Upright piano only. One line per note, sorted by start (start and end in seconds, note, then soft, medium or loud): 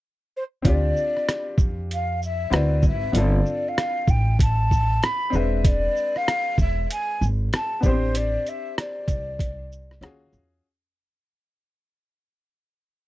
0.62 2.47 C4 medium
0.62 2.48 D4 medium
0.62 2.49 F4 medium
0.68 2.50 G4 medium
2.50 3.14 C4 medium
2.50 3.14 E4 medium
2.50 3.14 F#4 medium
2.50 3.15 B4 medium
3.12 3.21 B3 medium
3.12 5.29 D4 medium
3.12 5.30 F4 medium
3.17 5.29 C4 medium
3.17 5.31 A4 medium
5.30 7.80 G#3 medium
5.30 7.78 C4 medium
5.30 7.79 D4 medium
5.35 7.80 B4 medium
7.81 7.90 B3 medium
7.81 9.98 D4 medium
7.81 9.98 G4 medium
7.86 10.00 C4 medium
7.86 9.99 C5 medium
10.02 10.64 C#4 medium
10.02 10.65 F4 medium
10.02 10.65 F#4 medium
10.02 10.65 G#4 medium